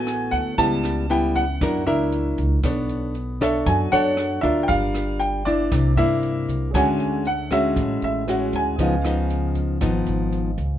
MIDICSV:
0, 0, Header, 1, 6, 480
1, 0, Start_track
1, 0, Tempo, 512821
1, 547, Time_signature, 4, 2, 24, 8
1, 10095, End_track
2, 0, Start_track
2, 0, Title_t, "Grand piano"
2, 0, Program_c, 0, 0
2, 0, Note_on_c, 0, 80, 112
2, 293, Note_on_c, 0, 78, 79
2, 320, Note_off_c, 0, 80, 0
2, 523, Note_off_c, 0, 78, 0
2, 543, Note_on_c, 0, 81, 89
2, 1037, Note_on_c, 0, 79, 77
2, 1039, Note_off_c, 0, 81, 0
2, 1269, Note_on_c, 0, 78, 81
2, 1279, Note_off_c, 0, 79, 0
2, 1714, Note_off_c, 0, 78, 0
2, 1746, Note_on_c, 0, 76, 66
2, 2192, Note_off_c, 0, 76, 0
2, 3200, Note_on_c, 0, 76, 79
2, 3430, Note_on_c, 0, 80, 84
2, 3440, Note_off_c, 0, 76, 0
2, 3668, Note_on_c, 0, 78, 99
2, 3675, Note_off_c, 0, 80, 0
2, 4113, Note_off_c, 0, 78, 0
2, 4131, Note_on_c, 0, 76, 83
2, 4318, Note_off_c, 0, 76, 0
2, 4336, Note_on_c, 0, 79, 62
2, 4380, Note_on_c, 0, 77, 81
2, 4394, Note_off_c, 0, 79, 0
2, 4863, Note_on_c, 0, 79, 72
2, 4878, Note_off_c, 0, 77, 0
2, 5088, Note_off_c, 0, 79, 0
2, 5104, Note_on_c, 0, 74, 73
2, 5592, Note_on_c, 0, 76, 87
2, 5600, Note_off_c, 0, 74, 0
2, 6036, Note_off_c, 0, 76, 0
2, 6317, Note_on_c, 0, 80, 87
2, 6803, Note_on_c, 0, 78, 76
2, 6806, Note_off_c, 0, 80, 0
2, 7018, Note_off_c, 0, 78, 0
2, 7043, Note_on_c, 0, 76, 94
2, 7513, Note_off_c, 0, 76, 0
2, 7527, Note_on_c, 0, 76, 73
2, 8009, Note_on_c, 0, 80, 79
2, 8010, Note_off_c, 0, 76, 0
2, 8920, Note_off_c, 0, 80, 0
2, 10095, End_track
3, 0, Start_track
3, 0, Title_t, "Grand piano"
3, 0, Program_c, 1, 0
3, 6279, Note_on_c, 1, 68, 41
3, 6297, Note_on_c, 1, 73, 39
3, 6316, Note_on_c, 1, 76, 42
3, 6337, Note_on_c, 1, 78, 46
3, 6506, Control_c, 1, 64, 127
3, 7703, Note_off_c, 1, 68, 0
3, 7712, Note_off_c, 1, 73, 0
3, 7722, Note_off_c, 1, 76, 0
3, 7733, Note_off_c, 1, 78, 0
3, 7741, Note_on_c, 1, 68, 33
3, 7746, Note_on_c, 1, 73, 28
3, 7759, Note_on_c, 1, 76, 30
3, 7765, Note_on_c, 1, 78, 34
3, 8186, Note_off_c, 1, 68, 0
3, 8200, Note_on_c, 1, 68, 40
3, 8224, Note_on_c, 1, 71, 38
3, 8226, Note_off_c, 1, 73, 0
3, 8232, Note_off_c, 1, 76, 0
3, 8235, Note_off_c, 1, 78, 0
3, 8237, Note_on_c, 1, 75, 39
3, 8239, Control_c, 1, 64, 0
3, 8257, Note_on_c, 1, 77, 45
3, 8412, Control_c, 1, 64, 127
3, 10095, Note_off_c, 1, 68, 0
3, 10095, Note_off_c, 1, 71, 0
3, 10095, Note_off_c, 1, 75, 0
3, 10095, Note_off_c, 1, 77, 0
3, 10095, End_track
4, 0, Start_track
4, 0, Title_t, "Nylon-string guitar"
4, 0, Program_c, 2, 24
4, 0, Note_on_c, 2, 45, 50
4, 0, Note_on_c, 2, 57, 48
4, 0, Note_on_c, 2, 59, 59
4, 0, Note_on_c, 2, 66, 53
4, 509, Note_off_c, 2, 57, 0
4, 512, Note_off_c, 2, 59, 0
4, 513, Note_off_c, 2, 66, 0
4, 526, Note_off_c, 2, 45, 0
4, 541, Note_on_c, 2, 49, 47
4, 546, Note_on_c, 2, 55, 51
4, 548, Note_on_c, 2, 59, 47
4, 550, Note_on_c, 2, 64, 51
4, 988, Note_off_c, 2, 55, 0
4, 988, Note_off_c, 2, 59, 0
4, 988, Note_off_c, 2, 64, 0
4, 1026, Note_on_c, 2, 55, 62
4, 1030, Note_on_c, 2, 59, 60
4, 1035, Note_on_c, 2, 64, 63
4, 1349, Note_off_c, 2, 55, 0
4, 1350, Note_off_c, 2, 59, 0
4, 1353, Note_off_c, 2, 64, 0
4, 1480, Note_off_c, 2, 49, 0
4, 1516, Note_on_c, 2, 54, 52
4, 1519, Note_on_c, 2, 62, 52
4, 1522, Note_on_c, 2, 64, 47
4, 1527, Note_on_c, 2, 70, 64
4, 1713, Note_off_c, 2, 62, 0
4, 1716, Note_off_c, 2, 64, 0
4, 1718, Note_off_c, 2, 70, 0
4, 1750, Note_on_c, 2, 62, 61
4, 1753, Note_on_c, 2, 64, 55
4, 1756, Note_on_c, 2, 70, 63
4, 2429, Note_off_c, 2, 62, 0
4, 2431, Note_off_c, 2, 64, 0
4, 2432, Note_off_c, 2, 70, 0
4, 2447, Note_off_c, 2, 54, 0
4, 2474, Note_on_c, 2, 59, 45
4, 2477, Note_on_c, 2, 62, 49
4, 2483, Note_on_c, 2, 69, 47
4, 2485, Note_on_c, 2, 73, 48
4, 2947, Note_off_c, 2, 62, 0
4, 2949, Note_off_c, 2, 69, 0
4, 2953, Note_off_c, 2, 73, 0
4, 3193, Note_on_c, 2, 62, 51
4, 3200, Note_on_c, 2, 69, 58
4, 3200, Note_on_c, 2, 73, 59
4, 3407, Note_off_c, 2, 59, 0
4, 3447, Note_on_c, 2, 54, 52
4, 3631, Note_off_c, 2, 62, 0
4, 3634, Note_off_c, 2, 73, 0
4, 3635, Note_off_c, 2, 69, 0
4, 3674, Note_on_c, 2, 62, 52
4, 3679, Note_on_c, 2, 73, 64
4, 3680, Note_on_c, 2, 69, 48
4, 4111, Note_off_c, 2, 62, 0
4, 4113, Note_off_c, 2, 73, 0
4, 4115, Note_off_c, 2, 69, 0
4, 4150, Note_on_c, 2, 62, 54
4, 4151, Note_on_c, 2, 65, 62
4, 4157, Note_on_c, 2, 70, 58
4, 4373, Note_off_c, 2, 54, 0
4, 4390, Note_on_c, 2, 55, 49
4, 5070, Note_off_c, 2, 62, 0
4, 5070, Note_off_c, 2, 65, 0
4, 5071, Note_off_c, 2, 70, 0
4, 5110, Note_off_c, 2, 55, 0
4, 5113, Note_on_c, 2, 58, 47
4, 5119, Note_on_c, 2, 62, 58
4, 5123, Note_on_c, 2, 64, 52
4, 5364, Note_on_c, 2, 48, 50
4, 5551, Note_off_c, 2, 58, 0
4, 5554, Note_off_c, 2, 62, 0
4, 5556, Note_off_c, 2, 64, 0
4, 5595, Note_on_c, 2, 62, 52
4, 5599, Note_on_c, 2, 58, 57
4, 5603, Note_on_c, 2, 64, 63
4, 6272, Note_off_c, 2, 62, 0
4, 6275, Note_off_c, 2, 58, 0
4, 6275, Note_off_c, 2, 64, 0
4, 6291, Note_off_c, 2, 48, 0
4, 6321, Note_on_c, 2, 50, 45
4, 6323, Note_on_c, 2, 56, 52
4, 6327, Note_on_c, 2, 66, 49
4, 6329, Note_on_c, 2, 61, 43
4, 6791, Note_off_c, 2, 56, 0
4, 6792, Note_off_c, 2, 61, 0
4, 6794, Note_off_c, 2, 66, 0
4, 7030, Note_on_c, 2, 56, 49
4, 7036, Note_on_c, 2, 61, 51
4, 7040, Note_on_c, 2, 66, 50
4, 7250, Note_off_c, 2, 50, 0
4, 7279, Note_on_c, 2, 45, 53
4, 7710, Note_off_c, 2, 56, 0
4, 7713, Note_off_c, 2, 61, 0
4, 7715, Note_off_c, 2, 66, 0
4, 7754, Note_on_c, 2, 56, 44
4, 7759, Note_on_c, 2, 61, 45
4, 7761, Note_on_c, 2, 66, 62
4, 8192, Note_off_c, 2, 56, 0
4, 8193, Note_off_c, 2, 61, 0
4, 8195, Note_off_c, 2, 66, 0
4, 8208, Note_off_c, 2, 45, 0
4, 8237, Note_on_c, 2, 49, 51
4, 8238, Note_on_c, 2, 53, 46
4, 8242, Note_on_c, 2, 63, 48
4, 8243, Note_on_c, 2, 59, 51
4, 8372, Note_off_c, 2, 53, 0
4, 8375, Note_off_c, 2, 63, 0
4, 8376, Note_off_c, 2, 59, 0
4, 8470, Note_on_c, 2, 53, 58
4, 8476, Note_on_c, 2, 59, 53
4, 8481, Note_on_c, 2, 63, 60
4, 9150, Note_off_c, 2, 53, 0
4, 9151, Note_off_c, 2, 59, 0
4, 9155, Note_off_c, 2, 63, 0
4, 9167, Note_off_c, 2, 49, 0
4, 9185, Note_on_c, 2, 44, 46
4, 9187, Note_on_c, 2, 53, 52
4, 9190, Note_on_c, 2, 59, 52
4, 9192, Note_on_c, 2, 63, 52
4, 9831, Note_off_c, 2, 53, 0
4, 9832, Note_off_c, 2, 59, 0
4, 9834, Note_off_c, 2, 63, 0
4, 10095, Note_off_c, 2, 44, 0
4, 10095, End_track
5, 0, Start_track
5, 0, Title_t, "Upright bass"
5, 0, Program_c, 3, 32
5, 0, Note_on_c, 3, 33, 66
5, 266, Note_off_c, 3, 33, 0
5, 303, Note_on_c, 3, 38, 86
5, 527, Note_off_c, 3, 38, 0
5, 547, Note_on_c, 3, 37, 80
5, 1469, Note_off_c, 3, 37, 0
5, 1509, Note_on_c, 3, 42, 91
5, 1731, Note_off_c, 3, 42, 0
5, 1750, Note_on_c, 3, 37, 71
5, 2194, Note_off_c, 3, 37, 0
5, 2226, Note_on_c, 3, 37, 85
5, 2449, Note_off_c, 3, 37, 0
5, 2467, Note_on_c, 3, 35, 81
5, 3389, Note_off_c, 3, 35, 0
5, 3430, Note_on_c, 3, 42, 92
5, 3651, Note_off_c, 3, 42, 0
5, 3673, Note_on_c, 3, 42, 67
5, 4116, Note_off_c, 3, 42, 0
5, 4153, Note_on_c, 3, 38, 92
5, 4373, Note_off_c, 3, 38, 0
5, 4387, Note_on_c, 3, 31, 72
5, 5309, Note_off_c, 3, 31, 0
5, 5353, Note_on_c, 3, 36, 97
5, 5573, Note_off_c, 3, 36, 0
5, 5578, Note_on_c, 3, 43, 67
5, 6028, Note_off_c, 3, 43, 0
5, 6070, Note_on_c, 3, 36, 74
5, 6291, Note_off_c, 3, 36, 0
5, 6310, Note_on_c, 3, 38, 80
5, 7231, Note_off_c, 3, 38, 0
5, 7268, Note_on_c, 3, 33, 85
5, 7490, Note_off_c, 3, 33, 0
5, 7509, Note_on_c, 3, 33, 74
5, 7954, Note_off_c, 3, 33, 0
5, 7984, Note_on_c, 3, 38, 84
5, 8208, Note_off_c, 3, 38, 0
5, 8223, Note_on_c, 3, 37, 82
5, 9147, Note_off_c, 3, 37, 0
5, 9181, Note_on_c, 3, 32, 94
5, 9407, Note_off_c, 3, 32, 0
5, 9431, Note_on_c, 3, 32, 75
5, 9875, Note_off_c, 3, 32, 0
5, 9901, Note_on_c, 3, 37, 83
5, 10095, Note_off_c, 3, 37, 0
5, 10095, End_track
6, 0, Start_track
6, 0, Title_t, "Drums"
6, 65, Note_on_c, 9, 37, 49
6, 65, Note_on_c, 9, 42, 35
6, 158, Note_off_c, 9, 37, 0
6, 158, Note_off_c, 9, 42, 0
6, 304, Note_on_c, 9, 36, 22
6, 304, Note_on_c, 9, 42, 42
6, 398, Note_off_c, 9, 36, 0
6, 398, Note_off_c, 9, 42, 0
6, 546, Note_on_c, 9, 36, 50
6, 551, Note_on_c, 9, 42, 55
6, 640, Note_off_c, 9, 36, 0
6, 645, Note_off_c, 9, 42, 0
6, 785, Note_on_c, 9, 37, 46
6, 785, Note_on_c, 9, 42, 35
6, 878, Note_off_c, 9, 37, 0
6, 878, Note_off_c, 9, 42, 0
6, 1031, Note_on_c, 9, 42, 47
6, 1125, Note_off_c, 9, 42, 0
6, 1268, Note_on_c, 9, 36, 22
6, 1270, Note_on_c, 9, 42, 39
6, 1362, Note_off_c, 9, 36, 0
6, 1364, Note_off_c, 9, 42, 0
6, 1509, Note_on_c, 9, 36, 58
6, 1511, Note_on_c, 9, 37, 52
6, 1511, Note_on_c, 9, 42, 48
6, 1603, Note_off_c, 9, 36, 0
6, 1604, Note_off_c, 9, 37, 0
6, 1604, Note_off_c, 9, 42, 0
6, 1751, Note_on_c, 9, 42, 39
6, 1844, Note_off_c, 9, 42, 0
6, 1987, Note_on_c, 9, 42, 41
6, 2081, Note_off_c, 9, 42, 0
6, 2228, Note_on_c, 9, 36, 21
6, 2228, Note_on_c, 9, 42, 40
6, 2321, Note_off_c, 9, 36, 0
6, 2321, Note_off_c, 9, 42, 0
6, 2467, Note_on_c, 9, 37, 56
6, 2467, Note_on_c, 9, 42, 51
6, 2469, Note_on_c, 9, 36, 55
6, 2560, Note_off_c, 9, 37, 0
6, 2560, Note_off_c, 9, 42, 0
6, 2562, Note_off_c, 9, 36, 0
6, 2707, Note_on_c, 9, 42, 36
6, 2801, Note_off_c, 9, 42, 0
6, 2947, Note_on_c, 9, 42, 38
6, 3040, Note_off_c, 9, 42, 0
6, 3191, Note_on_c, 9, 36, 20
6, 3197, Note_on_c, 9, 37, 59
6, 3197, Note_on_c, 9, 42, 41
6, 3284, Note_off_c, 9, 36, 0
6, 3290, Note_off_c, 9, 37, 0
6, 3290, Note_off_c, 9, 42, 0
6, 3430, Note_on_c, 9, 36, 57
6, 3431, Note_on_c, 9, 42, 52
6, 3523, Note_off_c, 9, 36, 0
6, 3525, Note_off_c, 9, 42, 0
6, 3670, Note_on_c, 9, 42, 39
6, 3763, Note_off_c, 9, 42, 0
6, 3904, Note_on_c, 9, 37, 52
6, 3904, Note_on_c, 9, 42, 36
6, 3998, Note_off_c, 9, 37, 0
6, 3998, Note_off_c, 9, 42, 0
6, 4148, Note_on_c, 9, 42, 37
6, 4149, Note_on_c, 9, 36, 22
6, 4242, Note_off_c, 9, 42, 0
6, 4243, Note_off_c, 9, 36, 0
6, 4389, Note_on_c, 9, 36, 55
6, 4390, Note_on_c, 9, 42, 47
6, 4482, Note_off_c, 9, 36, 0
6, 4484, Note_off_c, 9, 42, 0
6, 4628, Note_on_c, 9, 37, 46
6, 4628, Note_on_c, 9, 42, 34
6, 4722, Note_off_c, 9, 37, 0
6, 4722, Note_off_c, 9, 42, 0
6, 4872, Note_on_c, 9, 42, 42
6, 4965, Note_off_c, 9, 42, 0
6, 5110, Note_on_c, 9, 36, 20
6, 5113, Note_on_c, 9, 42, 44
6, 5204, Note_off_c, 9, 36, 0
6, 5207, Note_off_c, 9, 42, 0
6, 5351, Note_on_c, 9, 36, 59
6, 5353, Note_on_c, 9, 37, 50
6, 5353, Note_on_c, 9, 42, 54
6, 5445, Note_off_c, 9, 36, 0
6, 5446, Note_off_c, 9, 37, 0
6, 5446, Note_off_c, 9, 42, 0
6, 5594, Note_on_c, 9, 42, 38
6, 5687, Note_off_c, 9, 42, 0
6, 5829, Note_on_c, 9, 42, 34
6, 5923, Note_off_c, 9, 42, 0
6, 6071, Note_on_c, 9, 36, 21
6, 6078, Note_on_c, 9, 42, 43
6, 6165, Note_off_c, 9, 36, 0
6, 6172, Note_off_c, 9, 42, 0
6, 6311, Note_on_c, 9, 36, 57
6, 6317, Note_on_c, 9, 37, 53
6, 6317, Note_on_c, 9, 42, 49
6, 6405, Note_off_c, 9, 36, 0
6, 6411, Note_off_c, 9, 37, 0
6, 6411, Note_off_c, 9, 42, 0
6, 6549, Note_on_c, 9, 42, 33
6, 6643, Note_off_c, 9, 42, 0
6, 6789, Note_on_c, 9, 42, 37
6, 6882, Note_off_c, 9, 42, 0
6, 7027, Note_on_c, 9, 37, 57
6, 7027, Note_on_c, 9, 42, 34
6, 7028, Note_on_c, 9, 36, 22
6, 7120, Note_off_c, 9, 37, 0
6, 7120, Note_off_c, 9, 42, 0
6, 7121, Note_off_c, 9, 36, 0
6, 7267, Note_on_c, 9, 36, 57
6, 7272, Note_on_c, 9, 42, 50
6, 7361, Note_off_c, 9, 36, 0
6, 7366, Note_off_c, 9, 42, 0
6, 7509, Note_on_c, 9, 42, 34
6, 7602, Note_off_c, 9, 42, 0
6, 7749, Note_on_c, 9, 37, 47
6, 7749, Note_on_c, 9, 42, 39
6, 7843, Note_off_c, 9, 37, 0
6, 7843, Note_off_c, 9, 42, 0
6, 7984, Note_on_c, 9, 42, 38
6, 7985, Note_on_c, 9, 36, 22
6, 8078, Note_off_c, 9, 42, 0
6, 8079, Note_off_c, 9, 36, 0
6, 8225, Note_on_c, 9, 36, 52
6, 8226, Note_on_c, 9, 42, 56
6, 8319, Note_off_c, 9, 36, 0
6, 8320, Note_off_c, 9, 42, 0
6, 8467, Note_on_c, 9, 37, 51
6, 8467, Note_on_c, 9, 42, 35
6, 8560, Note_off_c, 9, 37, 0
6, 8560, Note_off_c, 9, 42, 0
6, 8707, Note_on_c, 9, 42, 47
6, 8801, Note_off_c, 9, 42, 0
6, 8940, Note_on_c, 9, 42, 39
6, 8943, Note_on_c, 9, 36, 20
6, 9034, Note_off_c, 9, 42, 0
6, 9036, Note_off_c, 9, 36, 0
6, 9182, Note_on_c, 9, 37, 54
6, 9182, Note_on_c, 9, 42, 55
6, 9183, Note_on_c, 9, 36, 50
6, 9276, Note_off_c, 9, 37, 0
6, 9276, Note_off_c, 9, 42, 0
6, 9277, Note_off_c, 9, 36, 0
6, 9421, Note_on_c, 9, 42, 41
6, 9514, Note_off_c, 9, 42, 0
6, 9665, Note_on_c, 9, 42, 40
6, 9759, Note_off_c, 9, 42, 0
6, 9900, Note_on_c, 9, 36, 21
6, 9902, Note_on_c, 9, 42, 38
6, 9994, Note_off_c, 9, 36, 0
6, 9995, Note_off_c, 9, 42, 0
6, 10095, End_track
0, 0, End_of_file